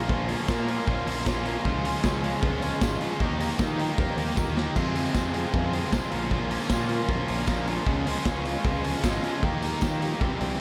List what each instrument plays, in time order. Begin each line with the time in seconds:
Already playing: picked electric bass A#1, distorted electric guitar C#4 F4, analog synth pad A#4 C#5 F5 C6
0.09 distorted electric guitar A#2 F3 A#3 C#4 F4, kick
0.29 distorted electric guitar A#2 F3 A#3 C#4 F4, open hi-hat
0.48 distorted electric guitar A#2 F3 A#3 C#4 F4, picked electric bass A#2, kick, snare, tambourine
0.68 distorted electric guitar A#2 F3 A#3 C#4 F4, open hi-hat
0.87 picked electric bass A#1, distorted electric guitar A#2 F3 A#3 C#4 F4, kick
1.06 picked electric bass A#1, distorted electric guitar A#2 F3 A#3 C#4 F4, open hi-hat
1.26 picked electric bass A#1, distorted electric guitar A#2 F3 A#3 C#4 F4, kick, snare, tambourine
1.45 distorted electric guitar A#2 F3 A#3 C#4 F4, open hi-hat
1.64 picked electric bass C#2, distorted electric guitar C#3 F3 G#3 C#4 F4, analog synth pad G#4 D#5 C#6, kick
1.84 distorted electric guitar C#3 F3 G#3 C#4 F4, open hi-hat
2.04 picked electric bass C#2, distorted electric guitar C#3 F3 G#3 C#4 F4, kick, snare, tambourine
2.24 distorted electric guitar C#3 F3 G#3 C#4 F4, open hi-hat
2.43 picked electric bass C#2, distorted electric guitar C#3 F3 G#3 C#4 F4, kick
2.62 distorted electric guitar C#3 F3 G#3 C#4 F4, open hi-hat
2.81 picked electric bass G#1, distorted electric guitar C#3 F3 G#3 C#4 F4, kick, snare, tambourine
3.01 distorted electric guitar C#3 F3 G#3 C#4 F4, open hi-hat
3.20 picked electric bass D#2, distorted electric guitar D#3 A#3 D#4 G4, analog synth pad G4 A#5, kick
3.40 distorted electric guitar D#3 A#3 D#4 G4, open hi-hat
3.59 distorted electric guitar D#3 A#3 D#4 G4, picked electric bass D#3, kick, snare, tambourine
3.79 distorted electric guitar D#3 A#3 D#4 G4, open hi-hat
3.98 picked electric bass D#2, distorted electric guitar D#3 A#3 D#4 G4, kick
4.17 picked electric bass D#2, distorted electric guitar D#3 A#3 D#4 G4, open hi-hat
4.37 picked electric bass D#2, distorted electric guitar D#3 A#3 D#4 G4, kick, high tom, tambourine
4.57 distorted electric guitar D#3 A#3 D#4 G4, snare
4.75 distorted electric guitar F2 C3 F3 G#3 C4 F4, picked electric bass F2, analog synth pad G#4 C5 C6, overdriven electric guitar G#4, kick, crash
4.96 distorted electric guitar F2 C3 F3 G#3 C4 F4, overdriven electric guitar G#4, open hi-hat
5.14 distorted electric guitar F2 C3 F3 G#3 C4 F4, picked electric bass F2, overdriven electric guitar G#4, kick, snare, tambourine
5.33 distorted electric guitar F2 C3 F3 G#3 C4 F4, overdriven electric guitar G#4, open hi-hat
5.53 distorted electric guitar F2 C3 F3 G#3 C4 F4, picked electric bass F2, overdriven electric guitar G#4, kick
5.73 distorted electric guitar F2 C3 F3 G#3 C4 F4, overdriven electric guitar G#4, open hi-hat
5.92 picked electric bass C2, distorted electric guitar F2 C3 F3 G#3 C4 F4, overdriven electric guitar G#4, kick, snare, tambourine
6.11 picked electric bass A#1, distorted electric guitar A#2 F3 A#3 C#4 F4, analog synth pad A#4 C#5, open hi-hat
6.31 distorted electric guitar A#2 F3 A#3 C#4 F4, kick
6.50 distorted electric guitar A#2 F3 A#3 C#4 F4, open hi-hat
6.69 distorted electric guitar A#2 F3 A#3 C#4 F4, picked electric bass A#2, kick, snare, tambourine
6.89 distorted electric guitar A#2 F3 A#3 C#4 F4, open hi-hat
7.08 picked electric bass A#1, distorted electric guitar A#2 F3 A#3 C#4 F4, kick
7.27 picked electric bass A#1, distorted electric guitar A#2 F3 A#3 C#4 F4, open hi-hat
7.47 picked electric bass A#1, distorted electric guitar A#2 F3 A#3 C#4 F4, kick, snare, tambourine
7.66 distorted electric guitar A#2 F3 A#3 C#4 F4, open hi-hat
7.86 picked electric bass C#2, distorted electric guitar C#3 F3 G#3 C#4 F4, analog synth pad G#4 D#5 F5 C#6, kick
8.05 distorted electric guitar C#3 F3 G#3 C#4 F4, open hi-hat
8.25 picked electric bass C#2, distorted electric guitar C#3 F3 G#3 C#4 F4, kick, snare, tambourine
8.45 distorted electric guitar C#3 F3 G#3 C#4 F4, open hi-hat
8.65 picked electric bass C#2, distorted electric guitar C#3 F3 G#3 C#4 F4, kick
8.84 distorted electric guitar C#3 F3 G#3 C#4 F4, open hi-hat
9.03 picked electric bass G#1, distorted electric guitar C#3 F3 G#3 C#4 F4, kick, snare, tambourine
9.23 distorted electric guitar C#3 F3 G#3 C#4 F4, open hi-hat
9.43 picked electric bass D#2, distorted electric guitar D#3 A#3 D#4 G4, analog synth pad G4 A#5, kick
9.62 distorted electric guitar D#3 A#3 D#4 G4, open hi-hat
9.81 distorted electric guitar D#3 A#3 D#4 G4, picked electric bass D#3, kick, snare, tambourine
10.01 distorted electric guitar D#3 A#3 D#4 G4, open hi-hat
10.20 picked electric bass C2, distorted electric guitar C3 E3 G3 C4 G4, analog synth pad C5 E5 C6, kick
10.40 picked electric bass C2, distorted electric guitar C3 E3 G3 C4 G4, open hi-hat